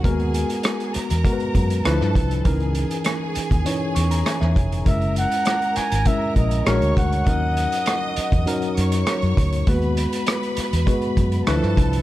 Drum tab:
HH |xxxxxxxxxxxxx-xx|xxxxx-xxx-xxx-xx|xxxxxxxxx-xxxxxx|x-xxx-xxxxxxxxxx|
SD |----r-r-----rr--|----r-------rr--|----r-r-----r---|----r-------r---|
BD |o-------o-o---o-|o------o------o-|o-------o-o---o-|o------o------o-|

HH |xxxxxxxxxxxxx-xx|
SD |----r-r-----rr--|
BD |o-------o-o---o-|